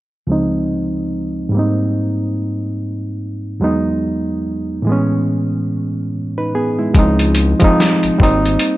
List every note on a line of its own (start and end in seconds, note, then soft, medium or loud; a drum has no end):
0.27 1.52 C#2 medium
0.27 1.53 F3 medium
0.27 1.53 G#3 medium
0.27 1.54 C4 medium
0.32 1.55 D#4 medium
1.49 3.55 G#2 medium
1.49 3.57 G3 medium
1.55 3.58 A#3 medium
1.55 3.59 C4 medium
1.59 3.60 D#4 medium
3.60 4.85 E2 medium
3.60 4.86 F#3 medium
3.60 4.86 G#3 medium
3.60 4.87 B3 medium
3.64 4.88 D#4 medium
4.82 6.89 A2 medium
4.82 6.90 E3 medium
4.87 6.09 G#3 medium
4.87 6.10 B3 medium
4.92 6.12 C#4 medium
6.38 6.53 D#4 soft
6.38 6.53 B4 medium
6.55 6.77 B3 medium
6.55 6.77 G#4 medium
6.79 6.94 G#3 soft
6.79 7.18 E4 medium
6.94 7.54 C#2 loud
6.94 7.50 F3 medium
6.94 7.51 G#3 medium
6.94 7.52 C4 medium
6.94 kick medium
6.94 closed hi-hat medium
6.99 7.53 D#4 medium
7.19 closed hi-hat soft
7.35 closed hi-hat medium
7.60 8.19 F3 medium
7.60 8.20 G#3 medium
7.60 8.20 C4 medium
7.60 kick medium
7.60 closed hi-hat soft
7.64 8.21 D#4 medium
7.80 snare medium
7.80 closed hi-hat medium
8.03 8.10 G#1 soft
8.03 closed hi-hat soft
8.18 8.57 G#1 loud
8.18 8.77 G3 medium
8.18 8.77 A#3 medium
8.18 8.77 C4 medium
8.18 kick loud
8.23 8.77 D#4 medium
8.23 closed hi-hat medium
8.45 closed hi-hat soft
8.59 closed hi-hat medium